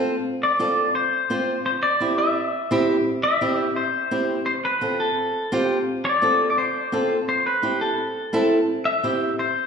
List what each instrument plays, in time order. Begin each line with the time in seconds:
Already playing: nylon-string guitar C4 F4 A4
0.43 clean electric guitar D5
0.59 nylon-string guitar C4 F4 A4
0.95 clean electric guitar C5
1.30 nylon-string guitar C4 F4 C5
1.66 clean electric guitar C5
1.83 clean electric guitar D5
2.00 nylon-string guitar C4 E4 G4
2.18 clean electric guitar E5
2.71 nylon-string guitar C4 E4 G4
3.23 clean electric guitar E5
3.41 nylon-string guitar C4 E4 G4
3.76 clean electric guitar C5
4.11 nylon-string guitar C4 E4 G4
4.46 clean electric guitar C5
4.65 clean electric guitar B4
4.81 nylon-string guitar C4 F4 A4
5.00 clean electric guitar A4
5.52 nylon-string guitar C4 F4 G4
6.05 clean electric guitar D5
6.22 nylon-string guitar C4 F4 A4
6.50 clean electric guitar D5
6.58 clean electric guitar C5
6.92 nylon-string guitar C4 F4 A4
7.29 clean electric guitar C5
7.46 clean electric guitar B4
7.62 nylon-string guitar C4 E4 G4
7.81 clean electric guitar A4
8.33 nylon-string guitar C4 E4 A4
8.85 clean electric guitar E5
9.03 nylon-string guitar C4 E4 G4
9.39 clean electric guitar C5